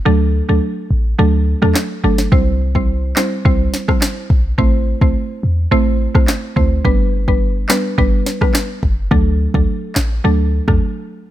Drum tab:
CP |------------x---|------x-----x---|------------x---|------x-----x---|
SD |-----------ro--o|------o---oro---|-----------ro---|------o---oro---|
BD |----------------|o--o----o--o--o-|o--o-------o--o-|o--o----o--o--o-|

CP |------x---------|
SD |------o----r----|
BD |o--o-------o----|